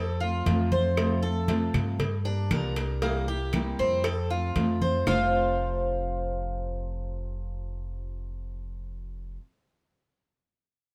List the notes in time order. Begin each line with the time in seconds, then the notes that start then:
Already playing: F2 A4
0.20 A3 C4 F4, high conga
0.45 F2 C3 F3 A3 C4 F4, cowbell, high conga
0.72 A3 C4 F4 C5, high conga
0.97 C3 F3 A3 C4 F4, cowbell, high conga, claves
1.23 A3 C4 F4 A4, high conga
1.48 C3 F3 A3 C4 F4, cowbell, high conga
1.74 G2, cowbell, high conga, low conga, claves
1.99 muted nylon-string guitar stroke, cowbell, high conga, low conga
2.25 A#3 D4 G4, high conga
2.51 C2 D3 F3 A#3 D4 G4 A#4, cowbell, high conga, claves
2.76 A#3 D4 G4, cowbell
3.02 C3 G3 A#3 E4 G4, cowbell, high conga
3.28 A#3 E4 G4, high conga
3.53 C3 G3 A#3 E4 G4, cowbell, high conga, claves
3.79 F2 C4, high conga
4.04 A4, muted nylon-string guitar stroke, cowbell, high conga, claves
4.30 A3 C4 F4, high conga
4.56 F2 C3 F3 A3 C4 F4, cowbell, high conga
4.81 A3 C4 F4 C5, high conga
5.06 F1 F2 C3 F3 A3 C4 F4 C5 F5, low bongo, low conga, claves